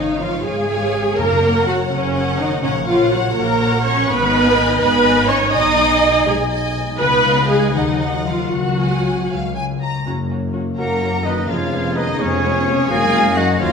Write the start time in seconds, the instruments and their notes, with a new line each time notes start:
Already playing: double bass section G#1, harp G#2 G#3 B3 C#5, cello section D#3, viola section D#4, violin section C#5 F5
0.09 harp C#4
0.21 cello section F3, viola section F4, violin section F5
0.34 harp B4
0.44 double bass section G#1, cello section G#3, viola section G#4, harp C#5, violin section G#5
0.58 harp F5
0.69 violin section C#5 F5, harp C#5
0.83 harp B4
0.95 harp C#4
1.07 harp B3
1.18 double bass section F#1, timpani F#2, harp F#2, cello section A#3, viola section A#4, violin section A#5
1.31 harp C#3
1.43 harp A#3, violin section C#5 F#5
1.55 harp C#4
1.66 cello section F#3, harp F#4, viola section F#4, violin section F#5
1.78 harp A#4
1.90 double bass section F#1, cello section C#3, viola section C#4, harp C#5, violin section C#5
2.03 harp F#5
2.14 harp C#5, violin section C#5 F#5
2.27 harp A#4
2.38 cello section D#3, harp C#4, viola section D#4, violin section D#5
2.51 harp A#3
2.62 double bass section A#1, harp A#2, cello section C#3, viola section C#4, violin section C#5 F#5
2.76 harp A#3
2.86 cello section F3, harp C#4, viola section F4, violin section C#5 F5 F#5
3.00 harp A#3
3.11 cello section F#3, viola section F#4, harp F#4, violin section F#5
3.25 harp C#5
3.35 double bass section A#1, cello section A#3, harp F#4, viola section A#4, violin section A#5
3.50 harp F#5
3.59 violin section C#5 F#5, harp C#5
3.73 harp F#4
3.84 cello section C#4, harp C#4, viola section C#5, violin section C#6
3.97 harp A#3
4.08 double bass section G#1, harp G#2, cello section B3, viola section B4, violin section B5
4.21 harp D#3
4.32 harp G#3, violin section D#5 G#5
4.45 harp D#4
4.69 harp D#4
4.80 double bass section G#1, cello section B3, viola section B4, harp D#5, violin section B5
4.94 harp G#5
5.03 violin section D#5 G#5
5.29 cello section C#4, harp D#4, viola section C#5, violin section C#6
5.42 harp G#3
5.52 double bass section B1, harp B2, cello section D#4, violin section D#5 G#5 D#6, viola section D#5
5.66 harp B3
5.77 harp G#3, violin section D#5 G#5
5.90 harp D#4
6.02 harp G#4
6.14 harp D#4
6.26 double bass section B1, cello section G#3, viola section G#4, violin section G#5
6.39 harp G#5
6.50 harp D#5, violin section D#5 G#5
6.63 harp G#4
6.76 harp D#4
6.88 harp G#3
6.99 double bass section C#2, harp C#3, cello section B3, viola section B4, violin section B5
7.12 harp C#4
7.25 harp G#3, violin section D#5 F5
7.37 harp D#4
7.49 cello section G#3, harp F4, viola section G#4, violin section G#5
7.74 double bass section D#2, harp D#3, cello section D#3, viola section D#4, violin section D#5 F#5
7.88 harp F#3
8.00 harp A#3, violin section F#5
8.13 harp F#4
8.26 cello section F3, harp A#3, viola section F4, violin section F5
8.39 harp A#4
8.52 double bass section C#2, harp C#3, cello section F#3, viola section F#4, violin section F#5
8.65 harp G#3
8.78 harp C#4, violin section F#5 G#5
8.92 harp F#4
9.05 harp G#4
9.18 harp C#5
9.30 double bass section C#2, harp C#3, violin section F5
9.43 harp G#3
9.56 harp C#4, violin section G#5
9.69 harp F4
9.82 harp G#4, violin section A#5
9.94 harp C#5
10.05 tuba F#1, harp F#2, double bass section F#2, french horn section A#3 C#4, viola section C#4 F#4
10.30 harp A#3, viola section C#4 F#4
10.54 harp C#4, viola section C#4 F#4
10.77 tuba F#1, double bass section F#2, cello section A#3, viola section C#4 F#4, harp F#4, cor anglais A#4, violin section A#4 A#5, clarinet A#4, flute F#5
11.02 harp C#4, viola section C#4 F#4
11.24 cello section D#3, harp A#3, viola section C#4 F#4, cor anglais D#4, violin section D#4 D#5, flute B4
11.48 tuba F1, harp F2, double bass section F2, cello section F3, viola section G#3 B3, french horn section B3, cor anglais F4, violin section F4 F5, clarinet G#4, flute C#5
11.72 viola section G#3 B3, harp B3
11.95 cello section D#3, viola section G#3 B3, harp C#4, cor anglais D#4, violin section D#4 D#5, flute B4
12.19 tuba F1, double bass section F2, cello section C#3, viola section G#3 B3, cor anglais C#4, violin section C#4 C#5, harp G#4, flute G#4, clarinet C#5
12.42 viola section G#3 B3
12.66 viola section G#3 B3, harp B3
12.89 tuba F#1, harp F#2, timpani F#2, double bass section F#2, viola section F#3 A#3, cello section G#3, french horn section A#3 C#4, violin section G#4 G#5, cor anglais G#4, clarinet A#4, flute F5
13.13 viola section F#3 A#3, harp A#3
13.35 viola section F#3 A#3, cello section F#3, harp C#4 F#4, cor anglais F#4, violin section F#4 F#5, flute D#5
13.59 tuba D#2, double bass section D#2, harp D#3, cello section F3, viola section F#3 A#3, cor anglais F4, violin section F4 F5, clarinet F#4, french horn section F#4, flute C#5